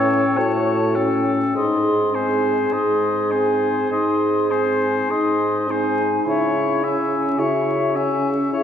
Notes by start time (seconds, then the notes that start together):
Already playing: A2 C#4 A4 C#5 G5
0.37 A2 A3 F#4 C#5 A5
0.95 C#4 A4 G5
1.55 G#2 D#4 G#4 D#5 C6
2.14 C4 C5 G#5
2.72 G#2 D#4 D#5 C6
3.31 C4 C5 G#5
3.92 G#2 D#4 D#5 C6
4.51 C4 C5 G#5
5.10 G#2 D#4 D#5 C6
5.69 C4 D#4 C5 G#5
6.26 C#3 E4 C#5 E5
6.83 C#4 E5 G#5
7.38 C#3 E4 F#4 C#5 E5
7.95 C#4 E5 G#5
8.51 C#3 E4 G#4 C#5 E5